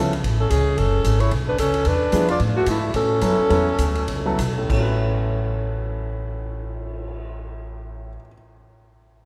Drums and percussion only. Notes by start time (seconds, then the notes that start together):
0.13 ride
0.24 kick, ride
0.50 kick, hi-hat pedal, ride
0.78 kick, ride
1.04 kick, hi-hat pedal, ride
1.20 ride
1.31 kick, ride
1.58 kick, hi-hat pedal, ride
1.74 ride
1.85 kick, ride
2.12 kick, hi-hat pedal, ride
2.28 ride
2.40 kick, ride
2.66 kick, hi-hat pedal, ride
2.94 kick, ride
3.21 kick, hi-hat pedal, ride
3.50 kick, ride
3.78 kick, hi-hat pedal, ride
3.95 ride
4.08 kick, ride
4.39 kick, hi-hat pedal, ride
4.70 kick, crash
4.88 cymbal swell